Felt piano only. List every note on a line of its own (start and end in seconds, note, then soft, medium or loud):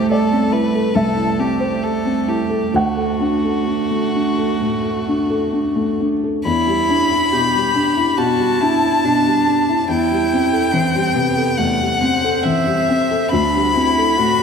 0.00 0.91 C2 medium
0.00 0.52 E4 medium
0.00 0.10 A4 medium
0.00 1.60 C5 medium
0.10 0.45 A4 medium
0.10 0.93 D5 medium
0.32 0.66 C4 medium
0.52 0.87 E4 medium
0.75 1.09 A4 medium
0.95 2.70 C2 medium
0.95 2.71 E5 medium
1.16 1.52 E4 soft
1.38 1.74 C4 medium
1.60 1.97 C5 medium
1.83 2.19 A4 soft
2.05 2.42 C4 soft
2.28 2.65 E4 soft
2.50 2.74 A4 soft
2.74 4.57 D2 medium
2.74 5.96 F#5 medium
2.97 3.35 A4 soft
3.20 3.58 D4 medium
3.44 3.82 A4 medium
3.67 4.05 D4 soft
3.91 4.29 A3 soft
4.15 4.52 D4 soft
4.38 4.75 A4 medium
4.60 4.98 A2 soft
4.83 5.21 A4 soft
5.08 5.44 D4 soft
5.30 5.67 A4 medium
5.52 5.90 D4 soft
5.76 6.13 A3 soft
6.00 6.37 D4 soft
6.24 6.46 A4 soft
6.45 8.13 E2 medium
6.67 7.01 G3 medium
6.89 7.23 D4 medium
7.11 7.45 E4 medium
7.33 7.67 B2 soft
7.55 7.88 G3 medium
7.74 8.09 D4 medium
7.97 8.30 E4 medium
8.18 8.52 B2 medium
8.38 8.72 G3 soft
8.60 8.94 D4 medium
8.82 9.16 E4 medium
9.04 9.38 B2 soft
9.26 9.59 G3 soft
9.47 9.81 D4 medium
9.69 9.89 E4 medium
9.89 11.53 E2 medium
10.11 10.44 G3 medium
10.33 10.65 C4 medium
10.53 10.85 A4 medium
10.74 11.06 E3 medium
10.95 11.28 G3 medium
11.15 11.49 C3 medium
11.37 11.71 A4 medium
11.59 13.29 E2 medium
11.80 12.13 G3 soft
12.02 12.35 C4 medium
12.24 12.57 A4 medium
12.45 12.79 E3 soft
12.67 13.02 G3 soft
12.89 13.24 C4 soft
13.11 13.32 A4 medium
13.33 14.43 D2 medium
13.55 13.88 G3 medium
13.75 14.09 C4 medium
13.98 14.31 A4 medium
14.18 14.43 A2 medium
14.39 14.43 G3 medium